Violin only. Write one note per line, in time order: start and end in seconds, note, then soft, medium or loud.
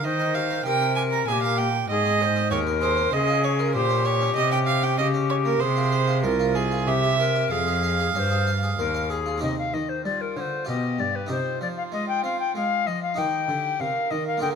0.04 0.36 D#5 medium
0.35 0.65 F5 medium
0.65 0.95 G5 loud
0.96 1.02 G#5 medium
1.11 1.27 A#5 medium
1.28 1.42 G#5 medium
1.43 1.60 F5 medium
1.58 1.89 G5 medium
1.90 2.50 D#5 loud
2.51 2.59 C#5 medium
2.82 3.15 C5 medium
3.13 3.46 D#5 loud
3.44 3.61 C#5 medium
3.60 3.75 A#4 medium
3.75 4.07 C5 loud
4.05 4.35 C#5 loud
4.36 4.52 D#5 loud
4.52 4.58 G5 loud
4.67 4.85 F5 medium
4.83 4.98 G5 medium
4.98 5.06 D#5 medium
5.30 5.36 C#5 medium
5.45 5.61 A#4 loud
5.60 6.22 C5 loud
6.23 6.57 A#4 medium
6.55 6.89 G#4 medium
6.87 7.50 E5 medium
7.51 9.07 F5 medium
10.05 10.70 F4 soft
10.68 11.31 G4 soft
11.30 13.16 F4 medium
13.17 13.50 D#4 soft
13.48 13.81 G4 medium
13.80 14.55 A#4 medium